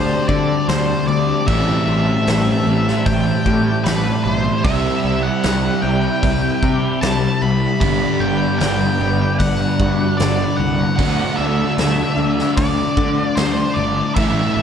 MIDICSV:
0, 0, Header, 1, 8, 480
1, 0, Start_track
1, 0, Tempo, 793651
1, 894, Time_signature, 4, 2, 24, 8
1, 8843, End_track
2, 0, Start_track
2, 0, Title_t, "Analog synth pad"
2, 0, Program_c, 0, 89
2, 0, Note_on_c, 0, 55, 73
2, 0, Note_on_c, 0, 60, 61
2, 0, Note_on_c, 0, 74, 61
2, 0, Note_on_c, 0, 81, 75
2, 876, Note_off_c, 0, 81, 0
2, 877, Note_off_c, 0, 74, 0
2, 898, Note_on_c, 0, 81, 80
2, 899, Note_on_c, 0, 76, 60
2, 2796, Note_off_c, 0, 81, 0
2, 2816, Note_on_c, 0, 83, 75
2, 4706, Note_off_c, 0, 60, 0
2, 4706, Note_off_c, 0, 76, 0
2, 4728, Note_on_c, 0, 74, 68
2, 6622, Note_off_c, 0, 83, 0
2, 6624, Note_off_c, 0, 55, 0
2, 6626, Note_off_c, 0, 74, 0
2, 6643, Note_on_c, 0, 74, 68
2, 6646, Note_on_c, 0, 81, 65
2, 8549, Note_off_c, 0, 74, 0
2, 8551, Note_off_c, 0, 81, 0
2, 8565, Note_on_c, 0, 76, 70
2, 8565, Note_on_c, 0, 81, 69
2, 8843, Note_off_c, 0, 76, 0
2, 8843, Note_off_c, 0, 81, 0
2, 8843, End_track
3, 0, Start_track
3, 0, Title_t, "Lead electric guitar"
3, 0, Program_c, 1, 29
3, 0, Note_on_c, 1, 72, 82
3, 169, Note_off_c, 1, 72, 0
3, 171, Note_on_c, 1, 74, 78
3, 412, Note_off_c, 1, 74, 0
3, 414, Note_on_c, 1, 72, 80
3, 647, Note_off_c, 1, 72, 0
3, 650, Note_on_c, 1, 74, 80
3, 887, Note_on_c, 1, 76, 94
3, 900, Note_off_c, 1, 74, 0
3, 1115, Note_off_c, 1, 76, 0
3, 1123, Note_on_c, 1, 76, 83
3, 1848, Note_off_c, 1, 76, 0
3, 1851, Note_on_c, 1, 79, 85
3, 2323, Note_on_c, 1, 71, 84
3, 2346, Note_off_c, 1, 79, 0
3, 2561, Note_off_c, 1, 71, 0
3, 2563, Note_on_c, 1, 71, 85
3, 2630, Note_off_c, 1, 71, 0
3, 2630, Note_on_c, 1, 72, 85
3, 2806, Note_on_c, 1, 76, 92
3, 2815, Note_off_c, 1, 72, 0
3, 3161, Note_on_c, 1, 78, 79
3, 3180, Note_off_c, 1, 76, 0
3, 3520, Note_off_c, 1, 78, 0
3, 3522, Note_on_c, 1, 79, 92
3, 4239, Note_off_c, 1, 79, 0
3, 4242, Note_on_c, 1, 81, 86
3, 4486, Note_on_c, 1, 83, 91
3, 4492, Note_off_c, 1, 81, 0
3, 4714, Note_off_c, 1, 83, 0
3, 4722, Note_on_c, 1, 83, 92
3, 4961, Note_on_c, 1, 79, 82
3, 4972, Note_off_c, 1, 83, 0
3, 5188, Note_off_c, 1, 79, 0
3, 5195, Note_on_c, 1, 79, 86
3, 5675, Note_off_c, 1, 79, 0
3, 5678, Note_on_c, 1, 78, 89
3, 6154, Note_on_c, 1, 74, 83
3, 6176, Note_off_c, 1, 78, 0
3, 6390, Note_on_c, 1, 78, 90
3, 6407, Note_off_c, 1, 74, 0
3, 6622, Note_off_c, 1, 78, 0
3, 6629, Note_on_c, 1, 78, 87
3, 6876, Note_on_c, 1, 76, 87
3, 6884, Note_off_c, 1, 78, 0
3, 7599, Note_off_c, 1, 76, 0
3, 7601, Note_on_c, 1, 74, 81
3, 8077, Note_on_c, 1, 72, 78
3, 8100, Note_off_c, 1, 74, 0
3, 8309, Note_on_c, 1, 74, 76
3, 8330, Note_off_c, 1, 72, 0
3, 8555, Note_off_c, 1, 74, 0
3, 8557, Note_on_c, 1, 76, 86
3, 8789, Note_off_c, 1, 76, 0
3, 8797, Note_on_c, 1, 76, 83
3, 8843, Note_off_c, 1, 76, 0
3, 8843, End_track
4, 0, Start_track
4, 0, Title_t, "Overdriven electric guitar"
4, 0, Program_c, 2, 29
4, 0, Note_on_c, 2, 50, 72
4, 0, Note_on_c, 2, 57, 75
4, 0, Note_on_c, 2, 60, 82
4, 0, Note_on_c, 2, 66, 84
4, 877, Note_off_c, 2, 50, 0
4, 882, Note_off_c, 2, 57, 0
4, 888, Note_off_c, 2, 66, 0
4, 903, Note_off_c, 2, 60, 0
4, 906, Note_on_c, 2, 60, 84
4, 909, Note_on_c, 2, 64, 88
4, 2804, Note_off_c, 2, 60, 0
4, 2806, Note_off_c, 2, 64, 0
4, 2828, Note_on_c, 2, 64, 80
4, 4721, Note_off_c, 2, 64, 0
4, 4739, Note_on_c, 2, 59, 73
4, 4743, Note_on_c, 2, 62, 86
4, 6636, Note_off_c, 2, 59, 0
4, 6638, Note_off_c, 2, 62, 0
4, 6653, Note_on_c, 2, 60, 85
4, 6660, Note_on_c, 2, 66, 87
4, 8562, Note_off_c, 2, 66, 0
4, 8575, Note_off_c, 2, 60, 0
4, 8578, Note_on_c, 2, 60, 87
4, 8584, Note_on_c, 2, 64, 96
4, 8843, Note_off_c, 2, 60, 0
4, 8843, Note_off_c, 2, 64, 0
4, 8843, End_track
5, 0, Start_track
5, 0, Title_t, "Twelve-string acoustic guitar"
5, 0, Program_c, 3, 25
5, 0, Note_on_c, 3, 55, 66
5, 0, Note_on_c, 3, 60, 70
5, 0, Note_on_c, 3, 62, 68
5, 176, Note_on_c, 3, 69, 69
5, 411, Note_off_c, 3, 62, 0
5, 418, Note_on_c, 3, 62, 71
5, 654, Note_off_c, 3, 55, 0
5, 656, Note_on_c, 3, 55, 65
5, 896, Note_off_c, 3, 69, 0
5, 897, Note_off_c, 3, 55, 0
5, 897, Note_off_c, 3, 62, 0
5, 899, Note_on_c, 3, 55, 64
5, 1135, Note_off_c, 3, 60, 0
5, 1137, Note_on_c, 3, 60, 62
5, 1372, Note_off_c, 3, 55, 0
5, 1374, Note_on_c, 3, 55, 65
5, 1608, Note_off_c, 3, 60, 0
5, 1615, Note_on_c, 3, 60, 70
5, 1856, Note_on_c, 3, 64, 60
5, 2092, Note_on_c, 3, 67, 74
5, 2326, Note_off_c, 3, 64, 0
5, 2333, Note_on_c, 3, 64, 72
5, 2569, Note_off_c, 3, 55, 0
5, 2572, Note_on_c, 3, 55, 67
5, 2807, Note_off_c, 3, 55, 0
5, 2809, Note_on_c, 3, 55, 63
5, 2813, Note_off_c, 3, 60, 0
5, 2813, Note_off_c, 3, 64, 0
5, 3290, Note_off_c, 3, 55, 0
5, 3293, Note_on_c, 3, 55, 67
5, 3771, Note_on_c, 3, 64, 64
5, 4007, Note_off_c, 3, 67, 0
5, 4010, Note_on_c, 3, 67, 66
5, 4243, Note_off_c, 3, 64, 0
5, 4250, Note_on_c, 3, 64, 67
5, 4486, Note_off_c, 3, 55, 0
5, 4489, Note_on_c, 3, 55, 69
5, 4729, Note_off_c, 3, 64, 0
5, 4967, Note_on_c, 3, 59, 62
5, 5440, Note_off_c, 3, 59, 0
5, 5447, Note_on_c, 3, 59, 73
5, 5688, Note_on_c, 3, 62, 69
5, 5927, Note_off_c, 3, 67, 0
5, 5929, Note_on_c, 3, 66, 69
5, 5948, Note_off_c, 3, 55, 0
5, 6161, Note_off_c, 3, 62, 0
5, 6169, Note_on_c, 3, 62, 66
5, 6645, Note_off_c, 3, 59, 0
5, 6647, Note_off_c, 3, 62, 0
5, 6647, Note_off_c, 3, 66, 0
5, 6649, Note_on_c, 3, 57, 63
5, 6884, Note_off_c, 3, 57, 0
5, 6887, Note_on_c, 3, 57, 65
5, 7125, Note_off_c, 3, 57, 0
5, 7128, Note_on_c, 3, 57, 66
5, 7363, Note_off_c, 3, 57, 0
5, 7366, Note_on_c, 3, 57, 69
5, 7605, Note_on_c, 3, 60, 68
5, 8085, Note_off_c, 3, 60, 0
5, 8088, Note_on_c, 3, 60, 69
5, 8327, Note_off_c, 3, 57, 0
5, 8329, Note_on_c, 3, 57, 66
5, 8571, Note_on_c, 3, 52, 70
5, 8809, Note_off_c, 3, 57, 0
5, 8812, Note_on_c, 3, 57, 61
5, 8843, Note_off_c, 3, 52, 0
5, 8843, Note_off_c, 3, 57, 0
5, 8843, Note_off_c, 3, 60, 0
5, 8843, End_track
6, 0, Start_track
6, 0, Title_t, "Distorted electric guitar"
6, 0, Program_c, 4, 30
6, 0, Note_on_c, 4, 50, 64
6, 0, Note_on_c, 4, 57, 78
6, 0, Note_on_c, 4, 62, 85
6, 875, Note_off_c, 4, 62, 0
6, 882, Note_off_c, 4, 50, 0
6, 882, Note_off_c, 4, 57, 0
6, 884, Note_on_c, 4, 45, 89
6, 897, Note_on_c, 4, 52, 81
6, 905, Note_on_c, 4, 57, 86
6, 1595, Note_off_c, 4, 45, 0
6, 1599, Note_off_c, 4, 57, 0
6, 1606, Note_on_c, 4, 57, 89
6, 1619, Note_off_c, 4, 52, 0
6, 1621, Note_on_c, 4, 52, 73
6, 1628, Note_on_c, 4, 45, 66
6, 2794, Note_off_c, 4, 57, 0
6, 2802, Note_off_c, 4, 52, 0
6, 2803, Note_off_c, 4, 45, 0
6, 2805, Note_on_c, 4, 48, 73
6, 2818, Note_on_c, 4, 55, 88
6, 2828, Note_on_c, 4, 60, 83
6, 3513, Note_off_c, 4, 48, 0
6, 3513, Note_off_c, 4, 60, 0
6, 3520, Note_on_c, 4, 60, 89
6, 3531, Note_off_c, 4, 55, 0
6, 3534, Note_on_c, 4, 55, 74
6, 3544, Note_on_c, 4, 48, 71
6, 4708, Note_off_c, 4, 60, 0
6, 4716, Note_on_c, 4, 43, 82
6, 4720, Note_off_c, 4, 48, 0
6, 4726, Note_on_c, 4, 50, 83
6, 4734, Note_off_c, 4, 55, 0
6, 4737, Note_on_c, 4, 55, 94
6, 5426, Note_off_c, 4, 43, 0
6, 5431, Note_off_c, 4, 50, 0
6, 5433, Note_off_c, 4, 55, 0
6, 5435, Note_on_c, 4, 55, 91
6, 5449, Note_on_c, 4, 50, 74
6, 5457, Note_on_c, 4, 43, 69
6, 6628, Note_off_c, 4, 50, 0
6, 6636, Note_off_c, 4, 43, 0
6, 6636, Note_on_c, 4, 50, 77
6, 6645, Note_off_c, 4, 55, 0
6, 6648, Note_on_c, 4, 57, 86
6, 6656, Note_on_c, 4, 62, 86
6, 7346, Note_off_c, 4, 50, 0
6, 7348, Note_off_c, 4, 62, 0
6, 7355, Note_on_c, 4, 62, 84
6, 7366, Note_off_c, 4, 57, 0
6, 7368, Note_on_c, 4, 57, 74
6, 7379, Note_on_c, 4, 50, 69
6, 8550, Note_off_c, 4, 62, 0
6, 8560, Note_off_c, 4, 50, 0
6, 8562, Note_on_c, 4, 45, 85
6, 8572, Note_off_c, 4, 57, 0
6, 8575, Note_on_c, 4, 52, 81
6, 8585, Note_on_c, 4, 57, 93
6, 8843, Note_off_c, 4, 45, 0
6, 8843, Note_off_c, 4, 52, 0
6, 8843, Note_off_c, 4, 57, 0
6, 8843, End_track
7, 0, Start_track
7, 0, Title_t, "Picked electric bass"
7, 0, Program_c, 5, 34
7, 0, Note_on_c, 5, 38, 86
7, 79, Note_off_c, 5, 38, 0
7, 175, Note_on_c, 5, 50, 81
7, 319, Note_off_c, 5, 50, 0
7, 414, Note_on_c, 5, 38, 85
7, 558, Note_off_c, 5, 38, 0
7, 655, Note_on_c, 5, 38, 81
7, 799, Note_off_c, 5, 38, 0
7, 895, Note_on_c, 5, 33, 87
7, 1039, Note_off_c, 5, 33, 0
7, 1134, Note_on_c, 5, 33, 80
7, 1278, Note_off_c, 5, 33, 0
7, 1377, Note_on_c, 5, 33, 80
7, 1521, Note_off_c, 5, 33, 0
7, 1614, Note_on_c, 5, 33, 83
7, 1758, Note_off_c, 5, 33, 0
7, 1853, Note_on_c, 5, 33, 82
7, 1997, Note_off_c, 5, 33, 0
7, 2091, Note_on_c, 5, 45, 85
7, 2236, Note_off_c, 5, 45, 0
7, 2336, Note_on_c, 5, 33, 85
7, 2480, Note_off_c, 5, 33, 0
7, 2574, Note_on_c, 5, 35, 76
7, 2717, Note_off_c, 5, 35, 0
7, 2809, Note_on_c, 5, 36, 87
7, 2954, Note_off_c, 5, 36, 0
7, 3048, Note_on_c, 5, 36, 77
7, 3193, Note_off_c, 5, 36, 0
7, 3293, Note_on_c, 5, 36, 87
7, 3436, Note_off_c, 5, 36, 0
7, 3529, Note_on_c, 5, 36, 72
7, 3674, Note_off_c, 5, 36, 0
7, 3769, Note_on_c, 5, 36, 87
7, 3913, Note_off_c, 5, 36, 0
7, 4008, Note_on_c, 5, 48, 81
7, 4152, Note_off_c, 5, 48, 0
7, 4248, Note_on_c, 5, 36, 88
7, 4392, Note_off_c, 5, 36, 0
7, 4490, Note_on_c, 5, 36, 76
7, 4633, Note_off_c, 5, 36, 0
7, 4723, Note_on_c, 5, 31, 86
7, 4868, Note_off_c, 5, 31, 0
7, 4959, Note_on_c, 5, 31, 81
7, 5106, Note_off_c, 5, 31, 0
7, 5207, Note_on_c, 5, 31, 84
7, 5351, Note_off_c, 5, 31, 0
7, 5444, Note_on_c, 5, 31, 83
7, 5588, Note_off_c, 5, 31, 0
7, 5684, Note_on_c, 5, 31, 87
7, 5829, Note_off_c, 5, 31, 0
7, 5925, Note_on_c, 5, 43, 86
7, 6069, Note_off_c, 5, 43, 0
7, 6171, Note_on_c, 5, 31, 90
7, 6313, Note_off_c, 5, 31, 0
7, 6409, Note_on_c, 5, 36, 80
7, 6552, Note_off_c, 5, 36, 0
7, 6646, Note_on_c, 5, 38, 92
7, 6790, Note_off_c, 5, 38, 0
7, 6890, Note_on_c, 5, 38, 77
7, 7033, Note_off_c, 5, 38, 0
7, 7125, Note_on_c, 5, 38, 83
7, 7269, Note_off_c, 5, 38, 0
7, 7364, Note_on_c, 5, 38, 83
7, 7509, Note_off_c, 5, 38, 0
7, 7604, Note_on_c, 5, 38, 86
7, 7749, Note_off_c, 5, 38, 0
7, 7846, Note_on_c, 5, 50, 87
7, 7991, Note_off_c, 5, 50, 0
7, 8088, Note_on_c, 5, 38, 99
7, 8232, Note_off_c, 5, 38, 0
7, 8327, Note_on_c, 5, 31, 82
7, 8472, Note_off_c, 5, 31, 0
7, 8566, Note_on_c, 5, 33, 86
7, 8712, Note_off_c, 5, 33, 0
7, 8812, Note_on_c, 5, 33, 72
7, 8843, Note_off_c, 5, 33, 0
7, 8843, End_track
8, 0, Start_track
8, 0, Title_t, "Drums"
8, 174, Note_on_c, 9, 36, 87
8, 235, Note_off_c, 9, 36, 0
8, 415, Note_on_c, 9, 46, 51
8, 421, Note_on_c, 9, 38, 101
8, 476, Note_off_c, 9, 46, 0
8, 481, Note_off_c, 9, 38, 0
8, 894, Note_on_c, 9, 36, 100
8, 895, Note_on_c, 9, 46, 51
8, 955, Note_off_c, 9, 36, 0
8, 955, Note_off_c, 9, 46, 0
8, 1375, Note_on_c, 9, 46, 50
8, 1380, Note_on_c, 9, 38, 98
8, 1435, Note_off_c, 9, 46, 0
8, 1441, Note_off_c, 9, 38, 0
8, 1741, Note_on_c, 9, 38, 32
8, 1801, Note_off_c, 9, 38, 0
8, 1850, Note_on_c, 9, 46, 49
8, 1852, Note_on_c, 9, 36, 101
8, 1911, Note_off_c, 9, 46, 0
8, 1913, Note_off_c, 9, 36, 0
8, 2092, Note_on_c, 9, 36, 83
8, 2153, Note_off_c, 9, 36, 0
8, 2332, Note_on_c, 9, 46, 53
8, 2338, Note_on_c, 9, 38, 103
8, 2393, Note_off_c, 9, 46, 0
8, 2398, Note_off_c, 9, 38, 0
8, 2809, Note_on_c, 9, 46, 52
8, 2810, Note_on_c, 9, 36, 108
8, 2870, Note_off_c, 9, 36, 0
8, 2870, Note_off_c, 9, 46, 0
8, 3286, Note_on_c, 9, 46, 53
8, 3292, Note_on_c, 9, 38, 101
8, 3347, Note_off_c, 9, 46, 0
8, 3352, Note_off_c, 9, 38, 0
8, 3767, Note_on_c, 9, 46, 47
8, 3768, Note_on_c, 9, 36, 95
8, 3828, Note_off_c, 9, 36, 0
8, 3828, Note_off_c, 9, 46, 0
8, 4008, Note_on_c, 9, 36, 81
8, 4068, Note_off_c, 9, 36, 0
8, 4248, Note_on_c, 9, 46, 50
8, 4253, Note_on_c, 9, 38, 105
8, 4308, Note_off_c, 9, 46, 0
8, 4314, Note_off_c, 9, 38, 0
8, 4725, Note_on_c, 9, 36, 107
8, 4725, Note_on_c, 9, 46, 50
8, 4785, Note_off_c, 9, 46, 0
8, 4786, Note_off_c, 9, 36, 0
8, 5204, Note_on_c, 9, 46, 46
8, 5209, Note_on_c, 9, 38, 101
8, 5264, Note_off_c, 9, 46, 0
8, 5270, Note_off_c, 9, 38, 0
8, 5684, Note_on_c, 9, 46, 52
8, 5685, Note_on_c, 9, 36, 102
8, 5744, Note_off_c, 9, 46, 0
8, 5745, Note_off_c, 9, 36, 0
8, 5925, Note_on_c, 9, 36, 82
8, 5985, Note_off_c, 9, 36, 0
8, 6167, Note_on_c, 9, 46, 54
8, 6172, Note_on_c, 9, 38, 99
8, 6227, Note_off_c, 9, 46, 0
8, 6233, Note_off_c, 9, 38, 0
8, 6646, Note_on_c, 9, 36, 103
8, 6646, Note_on_c, 9, 46, 56
8, 6706, Note_off_c, 9, 36, 0
8, 6707, Note_off_c, 9, 46, 0
8, 7126, Note_on_c, 9, 46, 56
8, 7131, Note_on_c, 9, 38, 91
8, 7186, Note_off_c, 9, 46, 0
8, 7192, Note_off_c, 9, 38, 0
8, 7492, Note_on_c, 9, 38, 33
8, 7553, Note_off_c, 9, 38, 0
8, 7605, Note_on_c, 9, 36, 102
8, 7605, Note_on_c, 9, 46, 51
8, 7665, Note_off_c, 9, 46, 0
8, 7666, Note_off_c, 9, 36, 0
8, 7845, Note_on_c, 9, 36, 89
8, 7905, Note_off_c, 9, 36, 0
8, 8085, Note_on_c, 9, 46, 51
8, 8090, Note_on_c, 9, 38, 95
8, 8145, Note_off_c, 9, 46, 0
8, 8151, Note_off_c, 9, 38, 0
8, 8567, Note_on_c, 9, 36, 104
8, 8567, Note_on_c, 9, 46, 47
8, 8628, Note_off_c, 9, 36, 0
8, 8628, Note_off_c, 9, 46, 0
8, 8843, End_track
0, 0, End_of_file